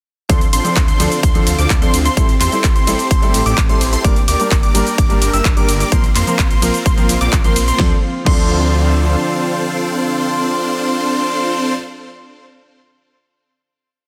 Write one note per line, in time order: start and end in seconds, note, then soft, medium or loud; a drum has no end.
0.29 0.45 D2 loud
0.29 2.15 D3 medium
0.29 0.38 F3 medium
0.29 0.38 C4 medium
0.29 0.47 C4 medium
0.29 4.01 C4 medium
0.29 0.47 D4 medium
0.29 0.38 D4 medium
0.29 0.47 F4 medium
0.29 2.15 F4 loud
0.29 0.47 A4 medium
0.29 0.38 A4 medium
0.29 0.47 C5 medium
0.29 0.47 C6 medium
0.29 kick loud
0.29 closed hi-hat loud
0.29 shaker soft
0.41 closed hi-hat soft
0.41 shaker soft
0.53 0.61 A1 medium
0.53 0.85 C4 medium
0.53 0.85 D4 medium
0.53 0.85 F4 medium
0.53 0.85 A4 medium
0.53 0.85 C5 loud
0.53 0.85 C6 loud
0.53 open hi-hat loud
0.53 ride medium
0.53 shaker medium
0.64 0.73 F3 medium
0.64 0.73 C4 medium
0.64 0.73 D4 medium
0.64 0.73 A4 medium
0.64 closed hi-hat soft
0.64 shaker soft
0.76 0.92 D2 medium
0.76 kick loud
0.76 clap loud
0.76 closed hi-hat medium
0.76 shaker soft
0.88 1.20 C4 medium
0.88 1.20 D4 medium
0.88 1.20 F4 medium
0.88 1.20 A4 medium
0.88 1.20 C5 medium
0.88 1.21 C6 medium
0.88 closed hi-hat soft
0.88 shaker soft
0.99 1.07 D2 medium
0.99 1.08 F3 medium
0.99 1.08 C4 medium
0.99 1.08 D4 medium
0.99 1.08 A4 medium
0.99 open hi-hat medium
0.99 ride medium
0.99 shaker medium
1.12 closed hi-hat soft
1.12 shaker soft
1.23 1.39 D2 medium
1.23 1.56 C4 medium
1.23 1.56 D4 medium
1.23 1.56 F4 medium
1.23 1.56 A4 medium
1.23 1.56 C5 medium
1.23 1.56 C6 loud
1.23 kick loud
1.23 closed hi-hat medium
1.23 shaker soft
1.34 1.48 F3 medium
1.34 1.48 C4 medium
1.34 1.48 D4 medium
1.34 1.49 A4 medium
1.34 closed hi-hat soft
1.34 shaker soft
1.47 1.54 D2 medium
1.47 open hi-hat loud
1.47 ride medium
1.47 shaker medium
1.58 1.66 D2 loud
1.58 1.76 C4 medium
1.58 1.76 D4 medium
1.58 1.76 F4 medium
1.58 1.76 A4 medium
1.58 1.76 D5 loud
1.58 1.76 D6 loud
1.58 closed hi-hat soft
1.58 shaker soft
1.70 1.85 D2 loud
1.70 kick loud
1.70 clap loud
1.70 closed hi-hat loud
1.70 shaker soft
1.81 1.90 F3 medium
1.81 1.90 C4 medium
1.81 1.99 C4 loud
1.81 1.99 D4 medium
1.81 1.90 D4 medium
1.81 1.99 F4 medium
1.81 1.99 A4 medium
1.81 1.90 A4 medium
1.81 1.99 C5 loud
1.81 1.99 C6 loud
1.81 closed hi-hat soft
1.81 shaker soft
1.94 2.09 D2 medium
1.94 open hi-hat medium
1.94 ride medium
1.94 shaker medium
2.05 2.15 C4 medium
2.05 2.15 D4 medium
2.05 2.15 F4 medium
2.05 2.15 A4 medium
2.05 2.15 C5 loud
2.05 2.15 C6 loud
2.05 closed hi-hat soft
2.05 shaker soft
2.16 2.32 A1 loud
2.16 2.25 G3 medium
2.16 4.03 A3 medium
2.16 2.25 C4 medium
2.16 2.34 C4 medium
2.16 2.34 E4 medium
2.16 2.25 E4 medium
2.16 4.03 G4 medium
2.16 2.34 G4 medium
2.16 2.34 A4 medium
2.16 2.26 A4 medium
2.16 2.34 C5 medium
2.16 2.34 C6 loud
2.16 kick loud
2.16 closed hi-hat medium
2.16 shaker soft
2.29 closed hi-hat soft
2.29 shaker soft
2.40 2.48 E2 medium
2.40 2.73 C4 medium
2.40 2.73 E4 medium
2.40 2.73 G4 medium
2.40 2.73 A4 medium
2.40 2.73 C5 loud
2.40 2.73 C6 medium
2.40 clap soft
2.40 open hi-hat loud
2.40 ride medium
2.40 shaker medium
2.52 2.60 G3 medium
2.52 2.60 C4 medium
2.52 2.61 E4 medium
2.52 2.61 A4 medium
2.52 closed hi-hat soft
2.52 shaker soft
2.64 2.79 A1 medium
2.64 kick loud
2.64 clap loud
2.64 closed hi-hat medium
2.64 shaker soft
2.75 3.08 C4 medium
2.75 3.08 E4 medium
2.75 3.08 G4 medium
2.75 3.08 A4 medium
2.75 3.08 C5 medium
2.75 3.08 C6 medium
2.75 closed hi-hat soft
2.75 shaker soft
2.87 2.95 A1 medium
2.87 2.95 G3 medium
2.87 2.96 C4 medium
2.87 2.96 E4 medium
2.87 2.96 A4 loud
2.87 open hi-hat medium
2.87 ride medium
2.87 shaker medium
2.99 closed hi-hat soft
2.99 shaker soft
3.11 3.26 A1 medium
3.11 3.43 C4 medium
3.11 3.43 E4 medium
3.11 3.43 G4 medium
3.11 3.43 A4 medium
3.11 3.43 C5 medium
3.11 3.43 C6 loud
3.11 kick loud
3.11 closed hi-hat medium
3.11 shaker soft
3.22 3.35 G3 medium
3.22 3.36 C4 medium
3.22 3.36 E4 medium
3.22 3.36 A4 loud
3.22 closed hi-hat soft
3.22 shaker soft
3.34 3.42 A1 medium
3.34 open hi-hat loud
3.34 ride medium
3.34 shaker medium
3.46 3.54 A1 loud
3.46 3.63 C4 medium
3.46 3.63 E4 medium
3.46 3.63 G4 medium
3.46 3.63 A4 medium
3.46 3.63 D5 loud
3.46 3.63 D6 loud
3.46 closed hi-hat soft
3.46 shaker soft
3.58 3.73 A1 loud
3.58 kick loud
3.58 clap loud
3.58 closed hi-hat medium
3.58 shaker soft
3.69 3.77 G3 medium
3.69 3.78 C4 medium
3.69 3.87 C4 loud
3.69 3.87 E4 medium
3.69 3.78 E4 medium
3.69 3.87 G4 medium
3.69 3.87 A4 medium
3.69 3.78 A4 medium
3.69 3.87 C5 loud
3.69 3.87 C6 loud
3.69 closed hi-hat soft
3.69 shaker soft
3.81 3.96 A1 medium
3.81 open hi-hat medium
3.81 ride medium
3.81 shaker medium
3.93 4.03 C4 medium
3.93 4.03 E4 medium
3.93 4.03 G4 medium
3.93 4.03 A4 medium
3.93 4.03 C5 loud
3.93 4.03 C6 loud
3.93 closed hi-hat soft
3.93 shaker soft
4.04 4.20 G1 loud
4.04 4.13 G3 medium
4.04 5.90 G3 medium
4.04 4.22 A#3 medium
4.04 4.13 A#3 medium
4.04 4.22 D4 medium
4.04 5.90 D4 medium
4.04 4.13 D4 medium
4.04 4.22 G4 medium
4.04 4.22 A#4 medium
4.04 5.90 A#4 loud
4.04 4.13 A#4 medium
4.04 4.22 D5 medium
4.04 4.22 D6 loud
4.04 kick loud
4.04 closed hi-hat medium
4.04 shaker soft
4.16 closed hi-hat soft
4.16 shaker soft
4.28 4.36 D2 medium
4.28 4.60 A#3 medium
4.28 4.60 D4 medium
4.28 4.60 G4 medium
4.28 4.60 A#4 medium
4.28 4.60 D5 loud
4.28 4.60 D6 loud
4.28 open hi-hat loud
4.28 ride medium
4.28 shaker medium
4.39 4.48 G3 medium
4.39 4.48 A#3 medium
4.39 4.48 D4 medium
4.39 4.48 A#4 medium
4.39 closed hi-hat soft
4.39 shaker soft
4.51 4.67 G1 medium
4.51 kick loud
4.51 clap loud
4.51 closed hi-hat medium
4.51 shaker soft
4.63 4.95 A#3 medium
4.63 4.95 D4 medium
4.63 4.95 G4 medium
4.63 4.95 A#4 medium
4.63 4.95 D5 medium
4.63 4.95 D6 medium
4.63 closed hi-hat soft
4.63 shaker soft
4.74 4.83 G1 medium
4.74 4.83 G3 medium
4.74 4.83 A#3 medium
4.74 4.83 D4 medium
4.74 4.83 A#4 loud
4.74 open hi-hat loud
4.74 ride medium
4.74 shaker medium
4.87 closed hi-hat soft
4.87 shaker soft
4.98 5.14 G1 medium
4.98 5.31 A#3 medium
4.98 5.31 D4 medium
4.98 5.31 G4 medium
4.98 5.31 A#4 medium
4.98 5.31 D5 medium
4.98 5.31 D6 medium
4.98 kick loud
4.98 closed hi-hat medium
4.98 shaker soft
5.09 5.23 G3 medium
5.09 5.23 A#3 medium
5.09 5.23 D4 medium
5.09 5.24 A#4 loud
5.09 closed hi-hat soft
5.09 shaker soft
5.22 5.29 G1 medium
5.22 open hi-hat loud
5.22 ride medium
5.22 shaker medium
5.33 5.41 G1 loud
5.33 5.51 A#3 medium
5.33 5.51 D4 medium
5.33 5.51 G4 medium
5.33 5.51 A#4 medium
5.33 5.51 E5 loud
5.33 5.51 E6 loud
5.33 closed hi-hat soft
5.33 shaker soft
5.45 5.60 G1 loud
5.45 kick loud
5.45 clap loud
5.45 closed hi-hat medium
5.45 shaker soft
5.56 5.65 G3 medium
5.56 5.65 A#3 medium
5.56 5.74 A#3 loud
5.56 5.74 D4 medium
5.56 5.65 D4 medium
5.56 5.74 G4 loud
5.56 5.74 A#4 medium
5.56 5.66 A#4 medium
5.56 5.74 D5 loud
5.56 5.74 D6 loud
5.56 closed hi-hat soft
5.56 shaker soft
5.69 5.84 G1 loud
5.69 open hi-hat loud
5.69 ride medium
5.69 shaker medium
5.80 5.90 A#3 medium
5.80 5.90 D4 medium
5.80 5.90 G4 medium
5.80 5.90 A#4 medium
5.80 5.90 D5 loud
5.80 5.90 D6 loud
5.80 closed hi-hat soft
5.80 shaker soft
5.92 6.07 A#1 loud
5.92 6.00 F3 medium
5.92 6.00 A#3 medium
5.92 6.09 A#3 medium
5.92 7.78 A#3 medium
5.92 6.09 C4 medium
5.92 7.78 C4 medium
5.92 6.00 C4 medium
5.92 6.09 F4 medium
5.92 7.78 F4 loud
5.92 6.09 A#4 medium
5.92 6.01 A#4 loud
5.92 6.09 C5 loud
5.92 6.09 C6 medium
5.92 kick loud
5.92 closed hi-hat medium
5.92 shaker soft
6.04 closed hi-hat soft
6.04 shaker soft
6.15 6.23 F2 medium
6.15 6.48 A#3 medium
6.15 6.48 C4 medium
6.15 6.48 F4 medium
6.15 6.48 A#4 medium
6.15 6.48 C5 loud
6.15 6.48 C6 medium
6.15 clap soft
6.15 open hi-hat loud
6.15 ride medium
6.15 shaker medium
6.27 6.35 F3 medium
6.27 6.35 A#3 medium
6.27 6.36 C4 medium
6.27 6.36 A#4 medium
6.27 closed hi-hat soft
6.27 shaker soft
6.39 6.54 A#1 medium
6.39 kick loud
6.39 clap loud
6.39 closed hi-hat medium
6.39 shaker soft
6.51 6.83 A#3 medium
6.51 6.83 C4 medium
6.51 6.83 F4 medium
6.51 6.83 A#4 medium
6.51 6.83 C5 loud
6.51 6.83 C6 medium
6.51 closed hi-hat soft
6.51 shaker soft
6.62 6.70 A#1 medium
6.62 6.70 F3 medium
6.62 6.71 A#3 medium
6.62 6.71 C4 medium
6.62 6.71 A#4 loud
6.62 open hi-hat loud
6.62 ride medium
6.62 shaker medium
6.74 closed hi-hat soft
6.74 shaker soft
6.86 7.01 A#1 medium
6.86 7.18 A#3 medium
6.86 7.18 C4 medium
6.86 7.18 F4 medium
6.86 7.18 A#4 medium
6.86 7.18 C5 loud
6.86 7.18 C6 loud
6.86 kick loud
6.86 closed hi-hat medium
6.86 shaker soft
6.97 7.11 F3 medium
6.97 7.11 A#3 medium
6.97 7.11 C4 medium
6.97 7.11 A#4 loud
6.97 closed hi-hat soft
6.97 shaker soft
7.09 7.17 A#1 medium
7.09 open hi-hat loud
7.09 ride medium
7.09 shaker medium
7.21 7.29 A#1 loud
7.21 7.38 A#3 medium
7.21 7.38 C4 medium
7.21 7.38 F4 medium
7.21 7.38 A#4 medium
7.21 7.38 D5 loud
7.21 7.38 D6 loud
7.21 closed hi-hat soft
7.21 shaker soft
7.33 7.48 A#1 loud
7.33 kick loud
7.33 clap loud
7.33 closed hi-hat medium
7.33 shaker soft
7.44 7.52 F3 medium
7.44 7.53 A#3 medium
7.44 7.62 A#3 loud
7.44 7.62 C4 medium
7.44 7.53 C4 medium
7.44 7.62 F4 medium
7.44 7.62 A#4 medium
7.44 7.53 A#4 medium
7.44 7.62 C5 loud
7.44 7.62 C6 loud
7.44 closed hi-hat soft
7.44 shaker soft
7.56 7.71 A#1 loud
7.56 open hi-hat medium
7.56 ride medium
7.56 shaker medium
7.68 7.78 A#3 medium
7.68 7.78 C4 medium
7.68 7.78 F4 medium
7.68 7.78 A#4 medium
7.68 7.78 C5 loud
7.68 7.78 C6 loud
7.68 closed hi-hat soft
7.68 shaker soft
7.78 7.93 D2 loud
7.78 11.27 D3 medium
7.78 7.92 F3 medium
7.78 7.92 C4 medium
7.78 7.93 C4 medium
7.78 11.27 C4 medium
7.78 7.93 D4 medium
7.78 7.93 F4 medium
7.78 11.27 F4 loud
7.78 7.93 A4 medium
7.78 7.94 A4 loud
7.78 7.93 C5 loud
7.78 7.93 C6 medium
7.78 kick loud
7.78 snare medium
8.25 9.16 D2 loud
8.25 11.72 F3 medium
8.25 11.73 C4 medium
8.25 11.74 C4 medium
8.25 11.74 D4 medium
8.25 11.74 F4 medium
8.25 11.74 A4 medium
8.25 11.76 A4 medium
8.25 11.74 C5 medium
8.25 11.74 C6 medium
8.25 kick loud
8.25 crash medium